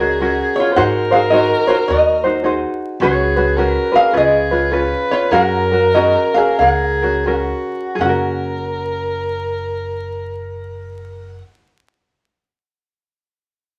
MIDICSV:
0, 0, Header, 1, 5, 480
1, 0, Start_track
1, 0, Key_signature, 6, "major"
1, 0, Tempo, 560748
1, 663, Time_signature, 4, 2, 24, 8
1, 3544, Tempo, 591133
1, 4504, Tempo, 634249
1, 5464, Tempo, 701754
1, 6424, Tempo, 745342
1, 10151, End_track
2, 0, Start_track
2, 0, Title_t, "Resonator guitar played with a steel bar"
2, 0, Program_c, 0, 25
2, 0, Note_on_c, 0, 66, 75
2, 0, Note_on_c, 0, 75, 86
2, 296, Note_off_c, 0, 75, 0
2, 296, Note_on_c, 0, 73, 86
2, 474, Note_off_c, 0, 73, 0
2, 476, Note_off_c, 0, 66, 0
2, 477, Note_on_c, 0, 73, 83
2, 512, Note_on_c, 0, 65, 69
2, 653, Note_on_c, 0, 78, 112
2, 662, Note_off_c, 0, 65, 0
2, 662, Note_off_c, 0, 73, 0
2, 679, Note_on_c, 0, 72, 83
2, 956, Note_off_c, 0, 72, 0
2, 959, Note_on_c, 0, 77, 89
2, 973, Note_off_c, 0, 78, 0
2, 985, Note_on_c, 0, 68, 69
2, 1006, Note_off_c, 0, 77, 0
2, 1029, Note_off_c, 0, 68, 0
2, 1114, Note_on_c, 0, 75, 91
2, 1143, Note_on_c, 0, 66, 69
2, 1426, Note_off_c, 0, 75, 0
2, 1427, Note_off_c, 0, 66, 0
2, 1430, Note_on_c, 0, 73, 85
2, 1454, Note_on_c, 0, 65, 64
2, 1479, Note_off_c, 0, 73, 0
2, 1499, Note_off_c, 0, 65, 0
2, 1608, Note_on_c, 0, 75, 84
2, 1629, Note_on_c, 0, 66, 73
2, 2364, Note_off_c, 0, 75, 0
2, 2375, Note_off_c, 0, 66, 0
2, 2595, Note_on_c, 0, 73, 87
2, 2609, Note_on_c, 0, 66, 63
2, 3177, Note_off_c, 0, 73, 0
2, 3177, Note_on_c, 0, 71, 87
2, 3350, Note_off_c, 0, 66, 0
2, 3386, Note_on_c, 0, 77, 107
2, 3391, Note_on_c, 0, 68, 76
2, 3400, Note_off_c, 0, 71, 0
2, 3545, Note_off_c, 0, 68, 0
2, 3558, Note_off_c, 0, 77, 0
2, 3567, Note_on_c, 0, 68, 69
2, 3570, Note_on_c, 0, 75, 88
2, 3996, Note_off_c, 0, 68, 0
2, 3998, Note_off_c, 0, 75, 0
2, 4334, Note_on_c, 0, 73, 96
2, 4347, Note_on_c, 0, 65, 69
2, 4502, Note_off_c, 0, 65, 0
2, 4507, Note_on_c, 0, 78, 105
2, 4512, Note_off_c, 0, 73, 0
2, 4519, Note_on_c, 0, 70, 83
2, 4855, Note_off_c, 0, 78, 0
2, 4855, Note_on_c, 0, 77, 105
2, 4952, Note_off_c, 0, 70, 0
2, 4974, Note_on_c, 0, 75, 79
2, 4990, Note_off_c, 0, 77, 0
2, 4991, Note_on_c, 0, 66, 65
2, 5272, Note_off_c, 0, 66, 0
2, 5276, Note_on_c, 0, 77, 83
2, 5295, Note_off_c, 0, 75, 0
2, 5298, Note_on_c, 0, 68, 74
2, 5459, Note_off_c, 0, 68, 0
2, 5459, Note_off_c, 0, 77, 0
2, 5462, Note_on_c, 0, 78, 88
2, 5481, Note_on_c, 0, 70, 72
2, 5975, Note_off_c, 0, 78, 0
2, 5975, Note_on_c, 0, 77, 88
2, 6215, Note_off_c, 0, 77, 0
2, 6224, Note_off_c, 0, 70, 0
2, 6432, Note_on_c, 0, 78, 82
2, 8628, Note_off_c, 0, 78, 0
2, 10151, End_track
3, 0, Start_track
3, 0, Title_t, "Soprano saxophone"
3, 0, Program_c, 1, 64
3, 0, Note_on_c, 1, 68, 100
3, 619, Note_on_c, 1, 72, 84
3, 631, Note_off_c, 1, 68, 0
3, 660, Note_on_c, 1, 70, 127
3, 673, Note_off_c, 1, 72, 0
3, 2409, Note_off_c, 1, 70, 0
3, 2570, Note_on_c, 1, 68, 99
3, 3054, Note_on_c, 1, 70, 105
3, 3066, Note_off_c, 1, 68, 0
3, 3546, Note_on_c, 1, 68, 104
3, 3558, Note_off_c, 1, 70, 0
3, 4018, Note_on_c, 1, 71, 116
3, 4030, Note_off_c, 1, 68, 0
3, 4496, Note_on_c, 1, 70, 117
3, 4508, Note_off_c, 1, 71, 0
3, 5465, Note_on_c, 1, 68, 98
3, 5476, Note_off_c, 1, 70, 0
3, 5926, Note_off_c, 1, 68, 0
3, 5930, Note_on_c, 1, 66, 79
3, 6397, Note_off_c, 1, 66, 0
3, 6429, Note_on_c, 1, 70, 88
3, 8625, Note_off_c, 1, 70, 0
3, 10151, End_track
4, 0, Start_track
4, 0, Title_t, "Ukulele"
4, 0, Program_c, 2, 24
4, 0, Note_on_c, 2, 70, 56
4, 5, Note_on_c, 2, 66, 56
4, 13, Note_on_c, 2, 61, 47
4, 172, Note_off_c, 2, 61, 0
4, 174, Note_on_c, 2, 68, 60
4, 177, Note_off_c, 2, 70, 0
4, 179, Note_off_c, 2, 66, 0
4, 182, Note_on_c, 2, 61, 71
4, 189, Note_on_c, 2, 66, 65
4, 191, Note_on_c, 2, 70, 71
4, 650, Note_off_c, 2, 68, 0
4, 653, Note_off_c, 2, 66, 0
4, 654, Note_off_c, 2, 61, 0
4, 654, Note_on_c, 2, 68, 75
4, 656, Note_on_c, 2, 66, 78
4, 657, Note_on_c, 2, 63, 86
4, 660, Note_off_c, 2, 70, 0
4, 664, Note_on_c, 2, 72, 94
4, 940, Note_off_c, 2, 72, 0
4, 951, Note_on_c, 2, 72, 58
4, 955, Note_off_c, 2, 66, 0
4, 960, Note_off_c, 2, 63, 0
4, 964, Note_off_c, 2, 68, 0
4, 965, Note_on_c, 2, 66, 48
4, 970, Note_on_c, 2, 63, 43
4, 1118, Note_off_c, 2, 63, 0
4, 1126, Note_off_c, 2, 66, 0
4, 1127, Note_on_c, 2, 68, 61
4, 1128, Note_on_c, 2, 63, 69
4, 1132, Note_off_c, 2, 72, 0
4, 1136, Note_on_c, 2, 66, 71
4, 1143, Note_on_c, 2, 72, 61
4, 1424, Note_off_c, 2, 72, 0
4, 1433, Note_off_c, 2, 66, 0
4, 1434, Note_on_c, 2, 72, 52
4, 1440, Note_off_c, 2, 68, 0
4, 1441, Note_off_c, 2, 63, 0
4, 1443, Note_on_c, 2, 66, 51
4, 1450, Note_on_c, 2, 63, 39
4, 1905, Note_off_c, 2, 72, 0
4, 1911, Note_off_c, 2, 66, 0
4, 1915, Note_on_c, 2, 72, 64
4, 1921, Note_on_c, 2, 66, 52
4, 1923, Note_off_c, 2, 63, 0
4, 1934, Note_on_c, 2, 63, 52
4, 2081, Note_off_c, 2, 63, 0
4, 2086, Note_on_c, 2, 68, 67
4, 2087, Note_off_c, 2, 66, 0
4, 2091, Note_on_c, 2, 63, 68
4, 2093, Note_off_c, 2, 72, 0
4, 2098, Note_on_c, 2, 66, 72
4, 2102, Note_on_c, 2, 72, 71
4, 2573, Note_off_c, 2, 63, 0
4, 2574, Note_off_c, 2, 66, 0
4, 2575, Note_off_c, 2, 68, 0
4, 2578, Note_on_c, 2, 68, 78
4, 2579, Note_off_c, 2, 72, 0
4, 2581, Note_on_c, 2, 61, 80
4, 2585, Note_on_c, 2, 66, 86
4, 2586, Note_on_c, 2, 71, 94
4, 2868, Note_off_c, 2, 71, 0
4, 2877, Note_off_c, 2, 66, 0
4, 2879, Note_on_c, 2, 71, 61
4, 2884, Note_off_c, 2, 68, 0
4, 2886, Note_off_c, 2, 61, 0
4, 2887, Note_on_c, 2, 66, 49
4, 2895, Note_on_c, 2, 61, 43
4, 3050, Note_off_c, 2, 61, 0
4, 3054, Note_on_c, 2, 68, 59
4, 3055, Note_off_c, 2, 71, 0
4, 3059, Note_off_c, 2, 66, 0
4, 3061, Note_on_c, 2, 61, 67
4, 3071, Note_on_c, 2, 66, 73
4, 3074, Note_on_c, 2, 71, 74
4, 3345, Note_off_c, 2, 71, 0
4, 3352, Note_off_c, 2, 66, 0
4, 3355, Note_on_c, 2, 71, 61
4, 3361, Note_off_c, 2, 61, 0
4, 3362, Note_on_c, 2, 66, 49
4, 3366, Note_off_c, 2, 68, 0
4, 3371, Note_on_c, 2, 61, 43
4, 3529, Note_off_c, 2, 61, 0
4, 3536, Note_off_c, 2, 71, 0
4, 3538, Note_on_c, 2, 68, 80
4, 3540, Note_on_c, 2, 61, 75
4, 3541, Note_off_c, 2, 66, 0
4, 3545, Note_on_c, 2, 65, 80
4, 3546, Note_on_c, 2, 71, 75
4, 3835, Note_off_c, 2, 71, 0
4, 3840, Note_off_c, 2, 65, 0
4, 3842, Note_off_c, 2, 68, 0
4, 3843, Note_off_c, 2, 61, 0
4, 3845, Note_on_c, 2, 71, 61
4, 3850, Note_on_c, 2, 65, 57
4, 3854, Note_on_c, 2, 61, 45
4, 4008, Note_off_c, 2, 61, 0
4, 4011, Note_on_c, 2, 68, 69
4, 4015, Note_off_c, 2, 65, 0
4, 4017, Note_off_c, 2, 71, 0
4, 4018, Note_on_c, 2, 61, 70
4, 4025, Note_on_c, 2, 65, 74
4, 4026, Note_on_c, 2, 71, 74
4, 4495, Note_off_c, 2, 68, 0
4, 4498, Note_on_c, 2, 68, 79
4, 4501, Note_off_c, 2, 61, 0
4, 4504, Note_off_c, 2, 65, 0
4, 4504, Note_on_c, 2, 61, 80
4, 4505, Note_off_c, 2, 71, 0
4, 4507, Note_on_c, 2, 66, 87
4, 4508, Note_on_c, 2, 70, 85
4, 4794, Note_off_c, 2, 70, 0
4, 4800, Note_off_c, 2, 68, 0
4, 4802, Note_off_c, 2, 66, 0
4, 4803, Note_off_c, 2, 61, 0
4, 4803, Note_on_c, 2, 70, 55
4, 4811, Note_on_c, 2, 66, 52
4, 4819, Note_on_c, 2, 61, 41
4, 4969, Note_off_c, 2, 61, 0
4, 4973, Note_off_c, 2, 66, 0
4, 4973, Note_on_c, 2, 68, 55
4, 4974, Note_off_c, 2, 70, 0
4, 4978, Note_on_c, 2, 61, 68
4, 4983, Note_on_c, 2, 66, 69
4, 4985, Note_on_c, 2, 70, 69
4, 5267, Note_off_c, 2, 70, 0
4, 5273, Note_off_c, 2, 66, 0
4, 5276, Note_on_c, 2, 70, 54
4, 5280, Note_off_c, 2, 61, 0
4, 5282, Note_on_c, 2, 66, 47
4, 5285, Note_off_c, 2, 68, 0
4, 5289, Note_on_c, 2, 61, 46
4, 5758, Note_off_c, 2, 70, 0
4, 5758, Note_on_c, 2, 70, 57
4, 5763, Note_off_c, 2, 66, 0
4, 5766, Note_on_c, 2, 66, 50
4, 5769, Note_off_c, 2, 61, 0
4, 5771, Note_on_c, 2, 61, 47
4, 5919, Note_off_c, 2, 61, 0
4, 5919, Note_off_c, 2, 70, 0
4, 5921, Note_off_c, 2, 66, 0
4, 5922, Note_on_c, 2, 68, 59
4, 5927, Note_on_c, 2, 61, 63
4, 5929, Note_on_c, 2, 66, 64
4, 5933, Note_on_c, 2, 70, 64
4, 6392, Note_off_c, 2, 68, 0
4, 6395, Note_on_c, 2, 68, 73
4, 6432, Note_off_c, 2, 61, 0
4, 6434, Note_on_c, 2, 61, 79
4, 6458, Note_off_c, 2, 66, 0
4, 6461, Note_on_c, 2, 66, 71
4, 6484, Note_off_c, 2, 70, 0
4, 6487, Note_on_c, 2, 70, 85
4, 8651, Note_off_c, 2, 68, 0
4, 8688, Note_off_c, 2, 61, 0
4, 8715, Note_off_c, 2, 66, 0
4, 8741, Note_off_c, 2, 70, 0
4, 10151, End_track
5, 0, Start_track
5, 0, Title_t, "Upright bass"
5, 0, Program_c, 3, 32
5, 0, Note_on_c, 3, 37, 80
5, 331, Note_off_c, 3, 37, 0
5, 662, Note_on_c, 3, 44, 112
5, 1284, Note_off_c, 3, 44, 0
5, 1617, Note_on_c, 3, 39, 90
5, 2240, Note_off_c, 3, 39, 0
5, 2567, Note_on_c, 3, 37, 108
5, 3199, Note_off_c, 3, 37, 0
5, 3540, Note_on_c, 3, 37, 93
5, 4165, Note_off_c, 3, 37, 0
5, 4495, Note_on_c, 3, 42, 108
5, 5123, Note_off_c, 3, 42, 0
5, 5459, Note_on_c, 3, 37, 92
5, 6086, Note_off_c, 3, 37, 0
5, 6420, Note_on_c, 3, 30, 95
5, 8616, Note_off_c, 3, 30, 0
5, 10151, End_track
0, 0, End_of_file